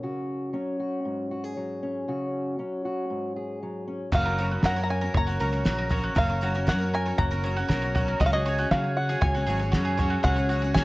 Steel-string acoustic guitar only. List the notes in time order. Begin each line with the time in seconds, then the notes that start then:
Already playing: F#3 C#4
0.03 C#3 F#4
0.53 F#3 C#4
0.80 F#4
1.05 G#2
1.31 F#4
1.44 G#4
1.57 F#3
1.83 C#4
2.08 C#3 F#4
2.58 F#3 C#4
2.85 F#4
3.10 G#2
3.36 G#4
3.63 F#3
3.87 C#4
4.13 F#2 F#3 A#3 C#4 A#4
4.39 C#4
4.63 F#3 A#4
4.89 C#4
5.15 A#3
5.40 C#3
5.92 C#4
6.17 F#2 A#3
6.43 C#4
6.67 F#3 A#4
6.94 C#4
7.19 A#3
7.44 C#3
7.95 C#4
8.20 C#3 F#3 C#4 F#4
8.47 F#4
8.71 F#3 F#4
8.98 F#4
9.23 C#4
9.48 G#2
9.99 F#4
10.23 C#3 C#4
10.49 F#4
10.75 F#3 F#4